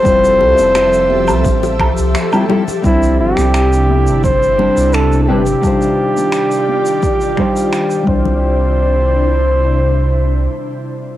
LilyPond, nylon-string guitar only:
\new Staff \with { instrumentName = "Nylon-string guitar" } { \time 4/4 \key c \major \tempo 4 = 86 <g c' e' f' c''>2~ <g c' e' f' c''>8 r8. <g c' e' f' g'>16 <g c' e' f' a'>16 r16 | <g c' d' e' c''>2~ <g c' d' e' c''>8 <g c' d' e' c''>4 <g c' d' e' b'>16 r16 | <g d' ees' f' c''>2~ <g d' ees' f' c''>8 <g d' ees' f' c''>4 <g c' d' e' c''>8~ | <g c' d' e' c''>1 | }